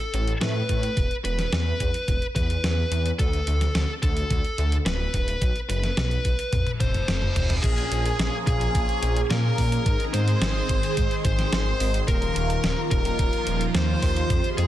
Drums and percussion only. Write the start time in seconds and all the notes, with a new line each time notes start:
0.00 closed hi-hat
0.14 closed hi-hat
0.28 closed hi-hat
0.41 snare, closed hi-hat
0.69 kick, closed hi-hat
0.83 closed hi-hat
0.97 kick, closed hi-hat
1.11 closed hi-hat
1.25 closed hi-hat
1.39 snare, closed hi-hat
1.53 snare, closed hi-hat
1.80 kick, closed hi-hat
1.94 closed hi-hat
2.08 kick, closed hi-hat
2.22 closed hi-hat
2.36 kick, closed hi-hat
2.50 closed hi-hat
2.64 snare, closed hi-hat
2.92 closed hi-hat
3.06 closed hi-hat
3.19 kick, closed hi-hat
3.33 closed hi-hat
3.47 closed hi-hat
3.61 snare, closed hi-hat
3.75 snare, closed hi-hat
4.03 kick, closed hi-hat
4.17 closed hi-hat
4.30 kick, closed hi-hat
4.45 closed hi-hat
4.58 closed hi-hat
4.72 closed hi-hat
4.86 snare, closed hi-hat
5.14 kick, closed hi-hat
5.28 closed hi-hat
5.42 kick, closed hi-hat
5.56 closed hi-hat
5.70 closed hi-hat
5.84 snare, closed hi-hat
5.97 snare, closed hi-hat
6.11 closed hi-hat
6.25 kick, closed hi-hat
6.39 closed hi-hat
6.53 kick, closed hi-hat, high tom
6.67 closed hi-hat, high tom
6.80 kick, closed hi-hat, high tom
6.94 closed hi-hat, mid tom
7.08 snare, closed hi-hat, mid tom
7.22 mid tom
7.36 closed hi-hat, mid tom
7.50 closed hi-hat, mid tom
7.64 kick, closed hi-hat, crash
7.78 closed hi-hat
7.92 closed hi-hat
8.06 closed hi-hat
8.20 snare, closed hi-hat
8.47 kick, closed hi-hat
8.61 closed hi-hat
8.75 kick, closed hi-hat
8.89 closed hi-hat
9.03 closed hi-hat
9.17 closed hi-hat
9.30 snare, closed hi-hat
9.58 kick, open hi-hat
9.72 closed hi-hat
9.86 kick, closed hi-hat
10.00 closed hi-hat
10.14 closed hi-hat
10.28 closed hi-hat
10.42 snare, closed hi-hat
10.69 kick, closed hi-hat
10.83 closed hi-hat
10.97 kick, closed hi-hat
11.11 closed hi-hat
11.25 kick, closed hi-hat
11.39 snare, closed hi-hat
11.53 snare, closed hi-hat
11.80 open hi-hat
11.94 closed hi-hat
12.08 kick, closed hi-hat
12.22 closed hi-hat
12.36 closed hi-hat
12.50 closed hi-hat
12.64 snare, closed hi-hat
12.91 kick, closed hi-hat
13.05 closed hi-hat
13.19 kick, closed hi-hat
13.33 closed hi-hat
13.47 closed hi-hat
13.61 closed hi-hat
13.75 snare, closed hi-hat
14.02 kick, open hi-hat
14.16 closed hi-hat
14.30 kick, closed hi-hat
14.44 closed hi-hat
14.58 closed hi-hat